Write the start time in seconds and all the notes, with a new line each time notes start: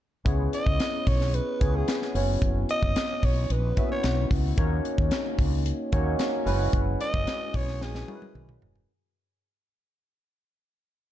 0.25 C#2 B3 C#4 E4 G#4 C#5, kick, closed hi-hat
0.53 D#5, closed hi-hat
0.66 C#2, kick
0.80 snare, closed hi-hat
1.07 B1 C#5, kick, open hi-hat
1.21 snare
1.34 B4, closed hi-hat
1.60 C#2 B3 C#4 E4 G#4 C#5, kick, closed hi-hat
1.76 G#4
1.88 snare, closed hi-hat
2.02 snare
2.14 F#1 B3 C#4 E4 F#4 C#5, open hi-hat
2.42 F#1, kick, closed hi-hat
2.69 D#5, closed hi-hat
2.82 F#1, kick
2.96 snare, closed hi-hat
3.23 B1 C#5, kick, open hi-hat
3.50 A#1 B4, closed hi-hat
3.77 A#3 C#4 E4 F#4 E5, kick, closed hi-hat
3.83 B3
3.92 C#5
4.04 B1, snare, closed hi-hat
4.31 C#2, kick, open hi-hat
4.57 D#2 A#3 C#4 D#4 F4 C#5, kick, closed hi-hat
4.64 F#4
4.85 closed hi-hat
4.98 D#2, kick
5.11 snare, closed hi-hat
5.39 C#2, kick, open hi-hat
5.66 closed hi-hat
5.92 D#2 A#3 C#4 D#4 F#4 C#5, kick, closed hi-hat
6.19 snare, closed hi-hat
6.46 F#1 G#3 C#4 E4 F#4 B4, open hi-hat
6.73 F#1, kick, closed hi-hat
7.01 D#5, closed hi-hat
7.14 F#1, kick
7.27 snare, closed hi-hat
7.54 B1 C#5, kick, open hi-hat
7.68 snare
7.81 A#1 G#4, snare
7.95 snare
8.08 G#3 C#4 E4 F#4 A#4, high tom
8.15 B4
8.22 high tom
8.35 B1, mid tom
8.49 mid tom
8.62 E1, floor tom
8.76 floor tom